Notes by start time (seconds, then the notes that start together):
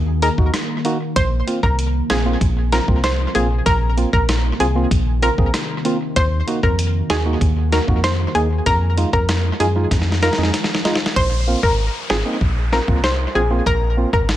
Already playing: D#2 D#3 A#3 F#4
0.22 D#4 G#4 A#4, closed hi-hat
0.38 D#2 A#3 D#4 F#4, kick
0.54 cross-stick, snare, closed hi-hat
0.85 A#3 D#4 F#4, closed hi-hat
1.16 A#1 C3 F3 C5, kick, closed hi-hat
1.47 A#3 C4 F4, closed hi-hat
1.63 C2 A#4, kick
1.79 closed hi-hat
2.10 A#1 C4 F4 G#4, cross-stick, snare, closed hi-hat
2.25 A#3 C4 F4
2.41 A#1, kick, closed hi-hat
2.72 C4 F4 A#4, snare, closed hi-hat
2.88 C2 A#3 C4 F4, kick
3.04 C5, cross-stick, snare, closed hi-hat
3.35 A#1 A#3 C4 F4 G#4, closed hi-hat
3.66 A#1 D#3 A#4, kick, closed hi-hat
3.97 A#3 C4 F4, closed hi-hat
4.13 A#1 A#4, kick
4.29 cross-stick, snare, closed hi-hat
4.60 C2 C4 F4 G#4, closed hi-hat
4.75 A#3 C4 F4
4.91 A#1, kick, closed hi-hat
5.22 C4 F4 A#4, closed hi-hat
5.38 A#1 A#3 C4 G#4, kick
5.54 cross-stick, snare, closed hi-hat
5.85 A#3 C4 F4, closed hi-hat
6.16 D#2 A#3 F#4 C5, kick, closed hi-hat
6.47 A#3 D#4 F#4, closed hi-hat
6.63 F2 A#4, kick
6.79 closed hi-hat
7.10 D#2 D#4 F#4 G#4, cross-stick, snare, closed hi-hat
7.25 A#3 D#4 F#4
7.41 D#2, kick, closed hi-hat
7.72 D#4 F#4 A#4, snare, closed hi-hat
7.88 F2 A#3 D#4 F#4, kick
8.04 C5, cross-stick, snare, closed hi-hat
8.35 D#2 A#3 D#4 G#4, closed hi-hat
8.66 F2 F3 G#3 A#4, kick, closed hi-hat
8.97 G#3 D#4 F4, closed hi-hat
9.13 F2 A#4, kick
9.29 cross-stick, snare, closed hi-hat
9.60 F#2 D#4 F4 G#4, closed hi-hat
9.75 G#3 D#4 F4
9.91 F2, kick, snare, closed hi-hat
10.02 snare
10.12 snare
10.22 D#4 F4 A#4, snare, closed hi-hat
10.33 snare
10.38 F2 G#3 D#4 G#4
10.43 snare
10.54 snare, closed hi-hat
10.64 snare
10.75 snare
10.85 G#3 D#4 F4, snare, closed hi-hat
10.96 snare
11.06 snare
11.16 A#1 C5, kick, downlifter
11.47 A#3 C4 F4
11.63 G#1 A#4, kick
12.10 G#1 C4 F4 G#4, cross-stick, snare
12.25 A#3 C4 D#4
12.41 A#1, kick
12.72 C4 F4 A#4, snare
12.88 C2 A#3 C4 F4, kick
13.04 C5, cross-stick, snare
13.35 A#1 C4 F4 G#4
13.50 A#3 C4 F4
13.66 A#1 A#4, kick
13.97 A#3 C4 F4
14.13 G#1 A#4, kick
14.29 cross-stick, snare